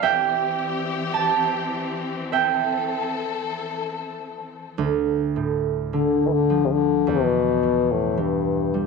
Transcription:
0.00 4.74 C4 medium
0.00 0.77 D5 medium
0.00 2.27 E5 medium
0.00 1.58 G5 medium
0.04 4.74 E3 medium
0.04 2.30 G4 medium
1.14 2.59 A5 medium
2.31 4.75 A4 medium
2.31 4.74 E5 soft
2.31 4.15 G5 medium
4.78 7.12 D2 medium
5.36 5.99 A2 soft
5.93 7.12 D3 soft
5.93 6.28 D3 medium
6.27 6.34 E3 medium
6.32 6.67 D3 medium
6.50 7.12 F3 soft
6.65 6.73 C3 medium
6.71 7.11 D3 medium
7.07 8.87 E2 medium
7.07 7.93 B2 medium
7.63 8.87 B2 soft
7.92 8.21 A2 medium
8.17 8.87 G2 medium
8.17 8.87 E3 soft
8.74 8.87 G3 soft

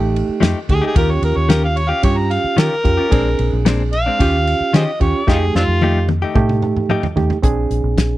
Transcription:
0.00 0.21 A1 medium
0.00 0.50 A3 medium
0.00 0.50 D#4 medium
0.00 0.51 G4 medium
0.16 ride medium
0.29 muted fingered electric bass stroke soft
0.40 0.53 F2 medium
0.40 0.58 F3 medium
0.40 0.58 A3 medium
0.40 0.58 D#4 medium
0.40 0.59 G4 loud
0.40 snare loud
0.40 ride medium
0.69 0.80 D2 medium
0.69 0.90 A3 medium
0.69 0.91 D#4 medium
0.69 0.91 G4 medium
0.69 0.83 G#4 loud
0.69 kick medium
0.69 ride medium
0.82 0.95 A3 soft
0.82 0.96 D#4 soft
0.82 0.95 G4 medium
0.87 0.97 G#4 medium
0.95 1.18 D#2 loud
0.95 1.12 D#3 medium
0.95 1.12 C#4 medium
0.95 1.80 C#4 medium
0.95 1.13 F4 medium
0.95 1.80 F4 medium
0.95 1.13 G4 medium
0.95 1.81 G4 medium
0.95 1.12 A#4 loud
0.95 kick loud
0.95 ride medium
1.11 1.23 C#5 medium
1.22 1.34 D#2 medium
1.22 1.38 A#4 medium
1.22 ride medium
1.36 1.91 D#2 loud
1.36 1.52 C#5 medium
1.49 1.66 D#3 medium
1.49 1.66 C#4 medium
1.49 1.67 F4 medium
1.49 1.67 G4 loud
1.49 1.63 A#4 medium
1.49 snare loud
1.49 ride medium
1.64 1.79 F5 medium
1.77 1.91 C#5 loud
1.77 ride medium
1.89 2.07 C#4 soft
1.89 2.07 F4 medium
1.89 2.06 G4 medium
1.89 2.02 F5 loud
2.03 2.37 G2 medium
2.03 2.66 C#4 medium
2.03 2.67 F4 medium
2.03 2.67 G4 medium
2.03 2.19 C#5 medium
2.03 kick medium
2.03 ride medium
2.17 2.33 A#5 medium
2.31 2.58 F5 medium
2.31 ride medium
2.44 muted fingered electric bass stroke soft
2.57 2.74 D#3 medium
2.57 2.69 D#3 medium
2.57 2.74 C#4 medium
2.57 2.74 F4 medium
2.57 2.75 G4 loud
2.57 3.63 A#4 loud
2.57 snare medium
2.57 ride medium
2.84 2.96 F2 medium
2.84 3.05 C#4 medium
2.84 3.06 F4 medium
2.84 3.06 G4 medium
2.84 kick medium
2.84 ride soft
2.97 3.12 C#4 soft
2.97 3.12 F4 medium
2.97 3.11 G4 medium
3.10 3.34 A#1 loud
3.10 3.28 A#2 medium
3.10 3.28 G#3 medium
3.10 3.94 C4 medium
3.10 3.28 C4 medium
3.10 3.95 D4 medium
3.10 3.29 D4 medium
3.10 3.95 G#4 medium
3.10 kick loud
3.10 ride medium
3.39 3.50 A#1 loud
3.39 ride medium
3.53 4.07 A#1 loud
3.65 3.82 A#2 loud
3.65 3.82 G#3 medium
3.65 3.82 C4 loud
3.65 3.83 D4 medium
3.65 snare loud
3.65 ride medium
3.93 4.71 F5 loud
3.93 ride medium
4.06 4.21 G#3 medium
4.06 4.20 C4 medium
4.06 4.20 D4 medium
4.19 4.53 D#2 medium
4.19 4.36 D#3 medium
4.19 4.82 C#4 medium
4.19 4.36 C#4 medium
4.19 4.83 F4 medium
4.19 4.37 F4 medium
4.19 4.83 G4 medium
4.19 4.37 G4 medium
4.19 kick medium
4.19 ride medium
4.47 ride medium
4.60 muted fingered electric bass stroke soft
4.73 4.90 D#3 medium
4.73 4.85 D#3 medium
4.73 4.90 C#4 medium
4.73 4.90 F4 medium
4.73 4.91 G4 medium
4.73 4.83 G#4 medium
4.73 4.84 C5 medium
4.73 5.01 D#5 medium
4.73 snare loud
4.73 ride medium
5.00 5.12 D#2 medium
5.00 5.21 C#4 medium
5.00 5.21 F4 medium
5.00 5.22 G4 medium
5.00 5.27 C#5 medium
5.00 kick medium
5.00 ride medium
5.27 5.50 F2 loud
5.27 5.44 F3 medium
5.27 6.11 A3 medium
5.27 5.44 A3 medium
5.27 6.11 D#4 medium
5.27 5.44 D#4 medium
5.27 5.37 D#4 medium
5.27 5.38 F4 medium
5.27 6.11 G4 medium
5.27 5.45 G4 medium
5.27 5.55 G#4 loud
5.27 kick loud
5.27 snare medium
5.55 5.66 F2 medium
5.55 5.63 C4 medium
5.55 5.62 D4 medium
5.55 6.07 F4 loud
5.55 snare medium
5.68 6.23 F2 loud
5.81 5.98 F3 medium
5.81 5.98 A3 medium
5.81 5.98 D#4 medium
5.81 5.99 G4 loud
5.81 high tom medium
6.09 high tom medium
6.22 6.39 A3 medium
6.22 6.39 D#4 medium
6.22 6.38 G4 medium
6.35 6.68 A2 loud
6.35 6.98 A3 medium
6.35 6.98 D#4 medium
6.35 6.98 G4 medium
6.35 kick medium
6.35 mid tom medium
6.49 mid tom medium
6.62 mid tom medium
6.76 muted fingered electric bass stroke soft
6.76 mid tom medium
6.89 7.00 F3 medium
6.89 7.06 F3 medium
6.89 7.06 A3 medium
6.89 7.06 D#4 loud
6.89 7.06 G4 loud
6.89 mid tom medium
7.03 floor tom medium
7.16 7.27 D#2 medium
7.16 7.37 A3 medium
7.16 7.37 D#4 medium
7.16 7.37 G4 medium
7.16 floor tom medium
7.30 floor tom medium
7.42 7.65 A#1 loud
7.42 8.18 C4 medium
7.42 8.18 D4 medium
7.42 8.18 G#4 medium
7.42 kick medium
7.42 closed hi-hat medium
7.70 7.81 A#1 medium
7.70 closed hi-hat medium
7.84 8.18 A#1 medium
7.98 kick medium
7.98 snare loud
7.98 closed hi-hat medium

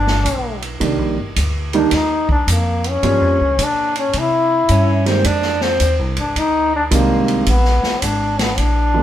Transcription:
0.00 0.24 G1 medium
0.00 0.60 D4 medium
0.07 snare soft
0.25 0.79 B1 medium
0.25 kick soft
0.25 hi-hat pedal soft
0.25 ride medium
0.62 ride soft
0.80 0.98 C2 medium
0.80 1.14 D#3 medium
0.80 1.14 G3 soft
0.80 1.14 A#3 soft
0.80 1.14 D4 medium
0.80 kick soft
0.80 ride soft
0.98 1.17 A#1 soft
1.18 1.35 G1 medium
1.36 1.90 D2 medium
1.36 kick soft
1.36 hi-hat pedal soft
1.36 ride medium
1.73 1.90 D#3 medium
1.73 1.90 G3 medium
1.73 1.90 A#3 medium
1.73 1.96 D4 medium
1.73 1.91 D#4 medium
1.73 ride soft
1.91 2.46 D#2 medium
1.91 2.30 D#4 medium
1.91 kick soft
1.91 snare soft
1.91 ride medium
2.29 2.48 D4 medium
2.29 kick soft
2.47 3.01 F2 medium
2.47 kick soft
2.47 hi-hat pedal medium
2.47 ride medium
2.52 2.90 A#3 medium
2.84 ride soft
2.89 3.65 C#4 medium
3.02 3.21 G2 medium
3.02 3.36 F3 medium
3.02 3.37 G3 medium
3.02 3.37 A#3 soft
3.02 3.37 C#4 medium
3.02 kick soft
3.02 ride soft
3.21 3.40 F2 soft
3.40 3.57 C#2 medium
3.58 4.12 A#2 medium
3.58 kick soft
3.58 hi-hat pedal soft
3.58 ride medium
3.64 3.98 D4 medium
3.95 4.20 C#4 medium
3.95 ride soft
4.13 4.68 C3 medium
4.13 kick soft
4.13 ride soft
4.19 5.09 E4 medium
4.69 5.23 G2 medium
4.69 5.08 C#4 medium
4.69 kick soft
4.69 hi-hat pedal soft
4.69 ride medium
5.06 5.23 D#3 medium
5.06 5.23 G3 soft
5.06 5.23 G#3 medium
5.06 5.23 A#3 medium
5.06 5.27 C4 medium
5.06 snare soft
5.06 ride soft
5.24 5.79 F2 medium
5.24 5.64 D4 medium
5.24 kick soft
5.24 ride medium
5.42 snare soft
5.61 5.99 C4 medium
5.61 snare soft
5.80 5.99 D#2 medium
5.80 kick soft
5.80 hi-hat pedal soft
5.80 ride medium
5.99 6.17 C2 soft
6.17 6.35 G#1 medium
6.17 6.40 D4 medium
6.17 ride soft
6.36 6.90 D2 medium
6.36 6.74 D#4 medium
6.36 kick soft
6.36 ride medium
6.76 6.84 D4 medium
6.91 7.45 C2 medium
6.91 7.47 D#3 medium
6.91 7.47 G3 medium
6.91 7.47 G#3 medium
6.91 7.44 A#3 medium
6.91 7.47 C4 medium
6.91 kick soft
6.91 hi-hat pedal soft
6.91 ride medium
7.28 ride soft
7.46 7.81 A#1 medium
7.46 8.05 B3 medium
7.46 kick soft
7.46 ride medium
7.65 snare soft
7.83 muted upright bass stroke soft
7.83 snare soft
8.02 8.56 G#1 medium
8.02 8.43 D4 medium
8.02 kick soft
8.02 hi-hat pedal medium
8.02 ride medium
8.39 8.61 B3 medium
8.39 snare soft
8.39 ride soft
8.57 9.03 A#1 medium
8.57 9.03 D4 medium
8.57 kick soft
8.57 ride soft
8.94 9.03 D3 medium
8.94 9.03 F3 soft
8.94 9.03 G#3 soft
8.94 9.03 B3 medium

